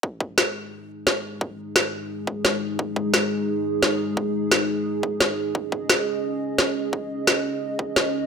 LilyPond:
<<
  \new Staff \with { instrumentName = "Analog synth pad" } { \time 4/4 \key cis \minor \tempo 4 = 174 <gis dis' gis'>1~ | <gis dis' gis'>1~ | <gis dis' gis'>1~ | <gis dis' gis'>1 |
<cis' dis''>1~ | <cis' dis''>1 | }
  \new DrumStaff \with { instrumentName = "Drums" } \drummode { \time 4/4 bd8 bd8 sn4 r4 sn4 | bd4 sn4 r8 bd8 sn4 | bd8 bd8 sn4 r4 sn4 | bd4 sn4 r8 bd8 sn4 |
bd8 bd8 sn4 r4 sn4 | bd4 sn4 r8 bd8 sn4 | }
>>